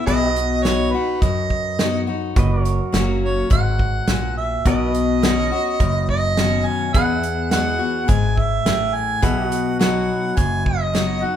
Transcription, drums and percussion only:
0.07 kick medium
0.07 closed hi-hat medium
0.36 closed hi-hat medium
0.65 snare loud
0.65 closed hi-hat soft
1.22 kick medium
1.22 closed hi-hat medium
1.50 kick medium
1.79 snare loud
1.79 closed hi-hat medium
2.36 kick loud
2.36 closed hi-hat medium
2.65 closed hi-hat medium
2.94 snare loud
2.94 closed hi-hat medium
3.51 kick loud
3.51 closed hi-hat medium
3.79 kick medium
4.08 snare loud
4.08 closed hi-hat medium
4.66 kick medium
4.66 closed hi-hat medium
4.94 closed hi-hat medium
5.23 snare loud
5.23 closed hi-hat medium
5.80 kick medium
5.80 closed hi-hat soft
6.09 kick medium
6.37 snare loud
6.37 closed hi-hat medium
6.94 kick loud
6.94 closed hi-hat medium
7.23 closed hi-hat medium
7.51 snare loud
7.51 closed hi-hat medium
8.09 kick medium
8.09 closed hi-hat medium
8.37 kick medium
8.66 snare loud
8.66 closed hi-hat medium
9.23 kick loud
9.23 closed hi-hat medium
9.52 closed hi-hat medium
9.81 snare loud
9.81 closed hi-hat medium
10.38 kick medium
10.38 closed hi-hat medium
10.66 kick medium
10.95 snare loud
10.95 closed hi-hat medium

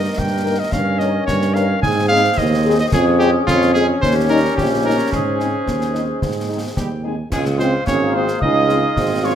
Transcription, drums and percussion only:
0.18 concert bass drum medium
0.18 snare medium
0.72 concert bass drum medium
0.72 snare medium
1.00 snare soft
1.28 concert bass drum medium
1.28 snare medium
1.42 snare medium
1.56 snare soft
1.83 concert bass drum medium
1.83 snare medium
2.38 concert bass drum medium
2.38 snare medium
2.92 concert bass drum medium
2.92 snare medium
2.92 crash soft
3.20 snare soft
3.48 concert bass drum medium
3.48 snare medium
3.62 snare medium
3.75 snare medium
4.03 concert bass drum medium
4.03 snare medium
4.58 concert bass drum medium
4.58 snare medium
5.13 concert bass drum medium
5.13 snare medium
5.40 snare soft
5.68 concert bass drum medium
5.68 snare medium
5.81 snare medium
5.95 snare medium
6.22 concert bass drum medium
6.22 snare medium
6.77 concert bass drum medium
6.77 snare medium
7.32 concert bass drum medium
7.32 snare medium
7.32 crash medium
7.45 snare medium
7.60 snare soft
7.87 concert bass drum medium
7.87 snare medium
8.28 snare medium
8.42 concert bass drum medium
8.69 snare soft
8.97 concert bass drum medium
8.97 snare medium

